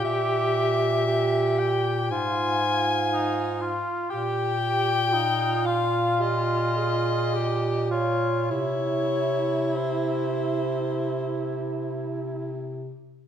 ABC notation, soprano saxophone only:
X:1
M:4/4
L:1/16
Q:1/4=54
K:Cphr
V:1 name="Soprano saxophone"
=e6 g2 a6- a z | g6 f2 e6 d2 | d4 c8 z4 |]